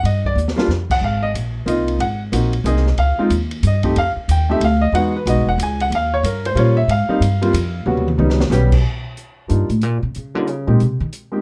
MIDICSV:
0, 0, Header, 1, 5, 480
1, 0, Start_track
1, 0, Key_signature, -4, "major"
1, 0, Tempo, 325910
1, 57, Time_signature, 3, 2, 24, 8
1, 16812, End_track
2, 0, Start_track
2, 0, Title_t, "Grand piano"
2, 0, Program_c, 0, 0
2, 81, Note_on_c, 0, 75, 76
2, 364, Note_off_c, 0, 75, 0
2, 387, Note_on_c, 0, 74, 95
2, 546, Note_off_c, 0, 74, 0
2, 824, Note_on_c, 0, 55, 76
2, 833, Note_on_c, 0, 58, 71
2, 843, Note_on_c, 0, 62, 67
2, 848, Note_on_c, 0, 65, 84
2, 992, Note_off_c, 0, 55, 0
2, 997, Note_off_c, 0, 58, 0
2, 1002, Note_off_c, 0, 62, 0
2, 1004, Note_off_c, 0, 65, 0
2, 1345, Note_on_c, 0, 78, 109
2, 1506, Note_off_c, 0, 78, 0
2, 1537, Note_on_c, 0, 77, 79
2, 1806, Note_on_c, 0, 75, 95
2, 1813, Note_off_c, 0, 77, 0
2, 1911, Note_off_c, 0, 75, 0
2, 2440, Note_on_c, 0, 58, 59
2, 2449, Note_on_c, 0, 60, 55
2, 2458, Note_on_c, 0, 63, 52
2, 2467, Note_on_c, 0, 65, 70
2, 2485, Note_on_c, 0, 75, 73
2, 2921, Note_off_c, 0, 75, 0
2, 2931, Note_off_c, 0, 58, 0
2, 2936, Note_off_c, 0, 60, 0
2, 2940, Note_off_c, 0, 63, 0
2, 2945, Note_off_c, 0, 65, 0
2, 2954, Note_on_c, 0, 78, 91
2, 3242, Note_off_c, 0, 78, 0
2, 3417, Note_on_c, 0, 58, 59
2, 3421, Note_on_c, 0, 60, 48
2, 3434, Note_on_c, 0, 63, 50
2, 3436, Note_on_c, 0, 66, 58
2, 3693, Note_off_c, 0, 58, 0
2, 3695, Note_off_c, 0, 60, 0
2, 3701, Note_off_c, 0, 63, 0
2, 3702, Note_off_c, 0, 66, 0
2, 3901, Note_on_c, 0, 58, 63
2, 3908, Note_on_c, 0, 60, 60
2, 3912, Note_on_c, 0, 63, 56
2, 3919, Note_on_c, 0, 68, 74
2, 3939, Note_on_c, 0, 75, 70
2, 4176, Note_off_c, 0, 58, 0
2, 4179, Note_off_c, 0, 60, 0
2, 4181, Note_off_c, 0, 63, 0
2, 4184, Note_off_c, 0, 68, 0
2, 4370, Note_off_c, 0, 75, 0
2, 4400, Note_on_c, 0, 77, 90
2, 4686, Note_off_c, 0, 77, 0
2, 4695, Note_on_c, 0, 56, 67
2, 4699, Note_on_c, 0, 60, 63
2, 4711, Note_on_c, 0, 63, 61
2, 4717, Note_on_c, 0, 65, 78
2, 4851, Note_off_c, 0, 56, 0
2, 4853, Note_off_c, 0, 60, 0
2, 4859, Note_off_c, 0, 63, 0
2, 4862, Note_off_c, 0, 65, 0
2, 5405, Note_on_c, 0, 75, 78
2, 5651, Note_on_c, 0, 57, 68
2, 5654, Note_on_c, 0, 60, 67
2, 5661, Note_on_c, 0, 63, 61
2, 5670, Note_on_c, 0, 67, 77
2, 5810, Note_off_c, 0, 57, 0
2, 5811, Note_off_c, 0, 60, 0
2, 5815, Note_off_c, 0, 63, 0
2, 5819, Note_off_c, 0, 67, 0
2, 5824, Note_off_c, 0, 75, 0
2, 5867, Note_on_c, 0, 77, 97
2, 6037, Note_off_c, 0, 77, 0
2, 6350, Note_on_c, 0, 79, 87
2, 6619, Note_on_c, 0, 57, 71
2, 6624, Note_off_c, 0, 79, 0
2, 6625, Note_on_c, 0, 60, 62
2, 6633, Note_on_c, 0, 63, 59
2, 6640, Note_on_c, 0, 67, 76
2, 6648, Note_on_c, 0, 76, 100
2, 6775, Note_off_c, 0, 57, 0
2, 6777, Note_off_c, 0, 60, 0
2, 6782, Note_off_c, 0, 63, 0
2, 6785, Note_off_c, 0, 67, 0
2, 6802, Note_off_c, 0, 76, 0
2, 6841, Note_on_c, 0, 77, 83
2, 7090, Note_on_c, 0, 75, 97
2, 7109, Note_off_c, 0, 77, 0
2, 7263, Note_off_c, 0, 75, 0
2, 7270, Note_on_c, 0, 56, 62
2, 7279, Note_on_c, 0, 59, 58
2, 7284, Note_on_c, 0, 63, 56
2, 7288, Note_on_c, 0, 78, 96
2, 7291, Note_on_c, 0, 66, 71
2, 7542, Note_off_c, 0, 56, 0
2, 7547, Note_off_c, 0, 59, 0
2, 7549, Note_off_c, 0, 63, 0
2, 7553, Note_off_c, 0, 66, 0
2, 7573, Note_off_c, 0, 78, 0
2, 7605, Note_on_c, 0, 71, 75
2, 7753, Note_on_c, 0, 56, 55
2, 7754, Note_on_c, 0, 59, 52
2, 7761, Note_off_c, 0, 71, 0
2, 7764, Note_on_c, 0, 63, 57
2, 7767, Note_on_c, 0, 66, 64
2, 7793, Note_on_c, 0, 75, 86
2, 8024, Note_off_c, 0, 56, 0
2, 8025, Note_off_c, 0, 59, 0
2, 8030, Note_off_c, 0, 63, 0
2, 8031, Note_off_c, 0, 66, 0
2, 8066, Note_off_c, 0, 75, 0
2, 8080, Note_on_c, 0, 78, 95
2, 8238, Note_off_c, 0, 78, 0
2, 8290, Note_on_c, 0, 80, 97
2, 8555, Note_off_c, 0, 80, 0
2, 8564, Note_on_c, 0, 78, 97
2, 8721, Note_off_c, 0, 78, 0
2, 8764, Note_on_c, 0, 77, 87
2, 9032, Note_off_c, 0, 77, 0
2, 9038, Note_on_c, 0, 73, 93
2, 9198, Note_off_c, 0, 73, 0
2, 9209, Note_on_c, 0, 70, 78
2, 9494, Note_off_c, 0, 70, 0
2, 9518, Note_on_c, 0, 72, 88
2, 9649, Note_on_c, 0, 55, 71
2, 9655, Note_on_c, 0, 58, 62
2, 9661, Note_on_c, 0, 61, 62
2, 9665, Note_on_c, 0, 65, 80
2, 9677, Note_off_c, 0, 72, 0
2, 9699, Note_on_c, 0, 73, 78
2, 9932, Note_off_c, 0, 55, 0
2, 9935, Note_off_c, 0, 58, 0
2, 9938, Note_off_c, 0, 61, 0
2, 9940, Note_off_c, 0, 65, 0
2, 9967, Note_on_c, 0, 76, 102
2, 9978, Note_off_c, 0, 73, 0
2, 10141, Note_off_c, 0, 76, 0
2, 10174, Note_on_c, 0, 77, 91
2, 10437, Note_on_c, 0, 55, 74
2, 10445, Note_on_c, 0, 58, 66
2, 10448, Note_on_c, 0, 60, 68
2, 10459, Note_on_c, 0, 63, 79
2, 10604, Note_off_c, 0, 55, 0
2, 10608, Note_off_c, 0, 58, 0
2, 10609, Note_off_c, 0, 60, 0
2, 10615, Note_off_c, 0, 63, 0
2, 10920, Note_on_c, 0, 55, 72
2, 10927, Note_on_c, 0, 58, 70
2, 10936, Note_on_c, 0, 60, 67
2, 10937, Note_on_c, 0, 65, 78
2, 11085, Note_off_c, 0, 55, 0
2, 11088, Note_off_c, 0, 58, 0
2, 11093, Note_off_c, 0, 60, 0
2, 11094, Note_off_c, 0, 65, 0
2, 11541, Note_off_c, 0, 77, 0
2, 11573, Note_on_c, 0, 55, 64
2, 11581, Note_on_c, 0, 59, 55
2, 11585, Note_on_c, 0, 61, 55
2, 11598, Note_on_c, 0, 66, 69
2, 11853, Note_off_c, 0, 55, 0
2, 11857, Note_off_c, 0, 59, 0
2, 11859, Note_off_c, 0, 61, 0
2, 11865, Note_off_c, 0, 66, 0
2, 12046, Note_on_c, 0, 55, 62
2, 12055, Note_on_c, 0, 59, 58
2, 12063, Note_on_c, 0, 61, 60
2, 12068, Note_on_c, 0, 63, 76
2, 12329, Note_off_c, 0, 55, 0
2, 12333, Note_off_c, 0, 59, 0
2, 12337, Note_off_c, 0, 61, 0
2, 12340, Note_off_c, 0, 63, 0
2, 12526, Note_on_c, 0, 55, 78
2, 12537, Note_on_c, 0, 59, 73
2, 12541, Note_on_c, 0, 61, 71
2, 12550, Note_on_c, 0, 67, 90
2, 12809, Note_off_c, 0, 55, 0
2, 12814, Note_off_c, 0, 59, 0
2, 12816, Note_off_c, 0, 61, 0
2, 12821, Note_off_c, 0, 67, 0
2, 13965, Note_on_c, 0, 55, 45
2, 13970, Note_on_c, 0, 58, 41
2, 13978, Note_on_c, 0, 62, 40
2, 13980, Note_on_c, 0, 63, 41
2, 13988, Note_on_c, 0, 65, 48
2, 14247, Note_off_c, 0, 55, 0
2, 14249, Note_off_c, 0, 58, 0
2, 14254, Note_off_c, 0, 62, 0
2, 14255, Note_off_c, 0, 63, 0
2, 14259, Note_off_c, 0, 65, 0
2, 15236, Note_on_c, 0, 55, 54
2, 15238, Note_on_c, 0, 58, 54
2, 15242, Note_on_c, 0, 61, 51
2, 15249, Note_on_c, 0, 63, 51
2, 15249, Note_on_c, 0, 65, 63
2, 15400, Note_off_c, 0, 55, 0
2, 15401, Note_off_c, 0, 58, 0
2, 15403, Note_off_c, 0, 61, 0
2, 15407, Note_off_c, 0, 63, 0
2, 15407, Note_off_c, 0, 65, 0
2, 15718, Note_on_c, 0, 56, 59
2, 15724, Note_on_c, 0, 58, 53
2, 15728, Note_on_c, 0, 60, 54
2, 15728, Note_on_c, 0, 63, 51
2, 15735, Note_on_c, 0, 67, 61
2, 15880, Note_off_c, 0, 56, 0
2, 15884, Note_off_c, 0, 58, 0
2, 15885, Note_off_c, 0, 63, 0
2, 15886, Note_off_c, 0, 60, 0
2, 15889, Note_off_c, 0, 67, 0
2, 16667, Note_on_c, 0, 56, 52
2, 16671, Note_on_c, 0, 58, 49
2, 16677, Note_on_c, 0, 60, 49
2, 16684, Note_on_c, 0, 63, 51
2, 16688, Note_on_c, 0, 67, 58
2, 16812, Note_off_c, 0, 56, 0
2, 16812, Note_off_c, 0, 58, 0
2, 16812, Note_off_c, 0, 60, 0
2, 16812, Note_off_c, 0, 63, 0
2, 16812, Note_off_c, 0, 67, 0
2, 16812, End_track
3, 0, Start_track
3, 0, Title_t, "Upright bass"
3, 0, Program_c, 1, 32
3, 51, Note_on_c, 1, 43, 87
3, 514, Note_off_c, 1, 43, 0
3, 523, Note_on_c, 1, 39, 89
3, 997, Note_off_c, 1, 39, 0
3, 1004, Note_on_c, 1, 41, 90
3, 1477, Note_off_c, 1, 41, 0
3, 1489, Note_on_c, 1, 32, 86
3, 1960, Note_off_c, 1, 32, 0
3, 1977, Note_on_c, 1, 34, 75
3, 2438, Note_off_c, 1, 34, 0
3, 2446, Note_on_c, 1, 36, 85
3, 2920, Note_off_c, 1, 36, 0
3, 2926, Note_on_c, 1, 32, 77
3, 3400, Note_off_c, 1, 32, 0
3, 3418, Note_on_c, 1, 34, 84
3, 3881, Note_off_c, 1, 34, 0
3, 3890, Note_on_c, 1, 36, 90
3, 4363, Note_off_c, 1, 36, 0
3, 4384, Note_on_c, 1, 37, 80
3, 4666, Note_off_c, 1, 37, 0
3, 4859, Note_on_c, 1, 39, 92
3, 5328, Note_off_c, 1, 39, 0
3, 5345, Note_on_c, 1, 43, 95
3, 5812, Note_off_c, 1, 43, 0
3, 5837, Note_on_c, 1, 41, 84
3, 6114, Note_off_c, 1, 41, 0
3, 6306, Note_on_c, 1, 39, 81
3, 6773, Note_off_c, 1, 39, 0
3, 6782, Note_on_c, 1, 38, 97
3, 7241, Note_off_c, 1, 38, 0
3, 7250, Note_on_c, 1, 40, 81
3, 7725, Note_off_c, 1, 40, 0
3, 7741, Note_on_c, 1, 35, 89
3, 7886, Note_on_c, 1, 32, 54
3, 7908, Note_off_c, 1, 35, 0
3, 8043, Note_off_c, 1, 32, 0
3, 8051, Note_on_c, 1, 28, 65
3, 8209, Note_off_c, 1, 28, 0
3, 8216, Note_on_c, 1, 37, 94
3, 8688, Note_off_c, 1, 37, 0
3, 8694, Note_on_c, 1, 39, 86
3, 9167, Note_off_c, 1, 39, 0
3, 9180, Note_on_c, 1, 43, 93
3, 9644, Note_off_c, 1, 43, 0
3, 9652, Note_on_c, 1, 46, 91
3, 10122, Note_off_c, 1, 46, 0
3, 10131, Note_on_c, 1, 44, 80
3, 10421, Note_off_c, 1, 44, 0
3, 10610, Note_on_c, 1, 43, 82
3, 11084, Note_off_c, 1, 43, 0
3, 11093, Note_on_c, 1, 41, 105
3, 11566, Note_off_c, 1, 41, 0
3, 11573, Note_on_c, 1, 39, 89
3, 12045, Note_off_c, 1, 39, 0
3, 12053, Note_on_c, 1, 37, 86
3, 12507, Note_off_c, 1, 37, 0
3, 12516, Note_on_c, 1, 35, 100
3, 12996, Note_off_c, 1, 35, 0
3, 13996, Note_on_c, 1, 43, 69
3, 14268, Note_off_c, 1, 43, 0
3, 14277, Note_on_c, 1, 45, 79
3, 14476, Note_off_c, 1, 45, 0
3, 14476, Note_on_c, 1, 46, 67
3, 14758, Note_off_c, 1, 46, 0
3, 14767, Note_on_c, 1, 48, 76
3, 14938, Note_off_c, 1, 48, 0
3, 14965, Note_on_c, 1, 49, 64
3, 15245, Note_off_c, 1, 49, 0
3, 15245, Note_on_c, 1, 50, 96
3, 15444, Note_off_c, 1, 50, 0
3, 15444, Note_on_c, 1, 49, 74
3, 15714, Note_off_c, 1, 49, 0
3, 15723, Note_on_c, 1, 46, 80
3, 15895, Note_off_c, 1, 46, 0
3, 15924, Note_on_c, 1, 48, 78
3, 16198, Note_off_c, 1, 48, 0
3, 16207, Note_on_c, 1, 51, 88
3, 16312, Note_off_c, 1, 51, 0
3, 16812, End_track
4, 0, Start_track
4, 0, Title_t, "Muted upright bass strokes"
4, 4685, Note_on_c, 9, 29, 41
4, 4832, Note_off_c, 9, 29, 0
4, 6132, Note_on_c, 9, 29, 40
4, 6280, Note_off_c, 9, 29, 0
4, 10436, Note_on_c, 9, 29, 41
4, 10583, Note_off_c, 9, 29, 0
4, 16812, End_track
5, 0, Start_track
5, 0, Title_t, "Drums"
5, 75, Note_on_c, 9, 51, 62
5, 222, Note_off_c, 9, 51, 0
5, 367, Note_on_c, 9, 36, 52
5, 514, Note_off_c, 9, 36, 0
5, 555, Note_on_c, 9, 44, 62
5, 702, Note_off_c, 9, 44, 0
5, 708, Note_on_c, 9, 38, 63
5, 855, Note_off_c, 9, 38, 0
5, 861, Note_on_c, 9, 38, 89
5, 1008, Note_off_c, 9, 38, 0
5, 1027, Note_on_c, 9, 38, 55
5, 1175, Note_off_c, 9, 38, 0
5, 1326, Note_on_c, 9, 36, 76
5, 1333, Note_on_c, 9, 49, 81
5, 1473, Note_off_c, 9, 36, 0
5, 1481, Note_off_c, 9, 49, 0
5, 1992, Note_on_c, 9, 44, 60
5, 1992, Note_on_c, 9, 51, 64
5, 2140, Note_off_c, 9, 44, 0
5, 2140, Note_off_c, 9, 51, 0
5, 2469, Note_on_c, 9, 44, 54
5, 2469, Note_on_c, 9, 51, 65
5, 2616, Note_off_c, 9, 44, 0
5, 2616, Note_off_c, 9, 51, 0
5, 2769, Note_on_c, 9, 51, 47
5, 2916, Note_off_c, 9, 51, 0
5, 2949, Note_on_c, 9, 51, 58
5, 3096, Note_off_c, 9, 51, 0
5, 3429, Note_on_c, 9, 44, 62
5, 3429, Note_on_c, 9, 51, 73
5, 3577, Note_off_c, 9, 44, 0
5, 3577, Note_off_c, 9, 51, 0
5, 3726, Note_on_c, 9, 51, 49
5, 3873, Note_off_c, 9, 51, 0
5, 3912, Note_on_c, 9, 44, 56
5, 3912, Note_on_c, 9, 51, 61
5, 4059, Note_off_c, 9, 44, 0
5, 4059, Note_off_c, 9, 51, 0
5, 4075, Note_on_c, 9, 38, 30
5, 4222, Note_off_c, 9, 38, 0
5, 4222, Note_on_c, 9, 38, 44
5, 4370, Note_off_c, 9, 38, 0
5, 4384, Note_on_c, 9, 51, 53
5, 4531, Note_off_c, 9, 51, 0
5, 4865, Note_on_c, 9, 44, 48
5, 4865, Note_on_c, 9, 51, 63
5, 5012, Note_off_c, 9, 44, 0
5, 5012, Note_off_c, 9, 51, 0
5, 5171, Note_on_c, 9, 51, 48
5, 5318, Note_off_c, 9, 51, 0
5, 5347, Note_on_c, 9, 44, 65
5, 5347, Note_on_c, 9, 51, 65
5, 5494, Note_off_c, 9, 44, 0
5, 5494, Note_off_c, 9, 51, 0
5, 5641, Note_on_c, 9, 51, 47
5, 5651, Note_on_c, 9, 36, 48
5, 5789, Note_off_c, 9, 51, 0
5, 5798, Note_off_c, 9, 36, 0
5, 5832, Note_on_c, 9, 51, 61
5, 5979, Note_off_c, 9, 51, 0
5, 6316, Note_on_c, 9, 44, 57
5, 6316, Note_on_c, 9, 51, 71
5, 6463, Note_off_c, 9, 44, 0
5, 6463, Note_off_c, 9, 51, 0
5, 6791, Note_on_c, 9, 51, 66
5, 6939, Note_off_c, 9, 51, 0
5, 7287, Note_on_c, 9, 51, 62
5, 7434, Note_off_c, 9, 51, 0
5, 7761, Note_on_c, 9, 44, 64
5, 7761, Note_on_c, 9, 51, 71
5, 7908, Note_off_c, 9, 44, 0
5, 7908, Note_off_c, 9, 51, 0
5, 8240, Note_on_c, 9, 44, 60
5, 8240, Note_on_c, 9, 51, 77
5, 8388, Note_off_c, 9, 44, 0
5, 8388, Note_off_c, 9, 51, 0
5, 8547, Note_on_c, 9, 51, 47
5, 8694, Note_off_c, 9, 51, 0
5, 8720, Note_on_c, 9, 51, 64
5, 8868, Note_off_c, 9, 51, 0
5, 9196, Note_on_c, 9, 44, 61
5, 9196, Note_on_c, 9, 51, 70
5, 9344, Note_off_c, 9, 44, 0
5, 9344, Note_off_c, 9, 51, 0
5, 9503, Note_on_c, 9, 51, 52
5, 9650, Note_off_c, 9, 51, 0
5, 9677, Note_on_c, 9, 51, 62
5, 9824, Note_off_c, 9, 51, 0
5, 10152, Note_on_c, 9, 51, 67
5, 10299, Note_off_c, 9, 51, 0
5, 10634, Note_on_c, 9, 44, 55
5, 10634, Note_on_c, 9, 51, 64
5, 10782, Note_off_c, 9, 44, 0
5, 10782, Note_off_c, 9, 51, 0
5, 10935, Note_on_c, 9, 51, 53
5, 11082, Note_off_c, 9, 51, 0
5, 11110, Note_on_c, 9, 44, 57
5, 11110, Note_on_c, 9, 51, 80
5, 11257, Note_off_c, 9, 44, 0
5, 11257, Note_off_c, 9, 51, 0
5, 11585, Note_on_c, 9, 47, 52
5, 11732, Note_off_c, 9, 47, 0
5, 11742, Note_on_c, 9, 47, 58
5, 11889, Note_off_c, 9, 47, 0
5, 11899, Note_on_c, 9, 48, 69
5, 12046, Note_off_c, 9, 48, 0
5, 12060, Note_on_c, 9, 48, 74
5, 12207, Note_off_c, 9, 48, 0
5, 12223, Note_on_c, 9, 38, 73
5, 12370, Note_off_c, 9, 38, 0
5, 12379, Note_on_c, 9, 38, 100
5, 12526, Note_off_c, 9, 38, 0
5, 12538, Note_on_c, 9, 38, 58
5, 12541, Note_on_c, 9, 44, 64
5, 12685, Note_off_c, 9, 38, 0
5, 12688, Note_off_c, 9, 44, 0
5, 12843, Note_on_c, 9, 36, 80
5, 12844, Note_on_c, 9, 49, 87
5, 12991, Note_off_c, 9, 36, 0
5, 12991, Note_off_c, 9, 49, 0
5, 13508, Note_on_c, 9, 42, 43
5, 13655, Note_off_c, 9, 42, 0
5, 13986, Note_on_c, 9, 42, 44
5, 14133, Note_off_c, 9, 42, 0
5, 14281, Note_on_c, 9, 42, 38
5, 14428, Note_off_c, 9, 42, 0
5, 14455, Note_on_c, 9, 42, 37
5, 14602, Note_off_c, 9, 42, 0
5, 14944, Note_on_c, 9, 42, 41
5, 15091, Note_off_c, 9, 42, 0
5, 15428, Note_on_c, 9, 42, 35
5, 15575, Note_off_c, 9, 42, 0
5, 15908, Note_on_c, 9, 42, 37
5, 16055, Note_off_c, 9, 42, 0
5, 16387, Note_on_c, 9, 42, 48
5, 16535, Note_off_c, 9, 42, 0
5, 16812, End_track
0, 0, End_of_file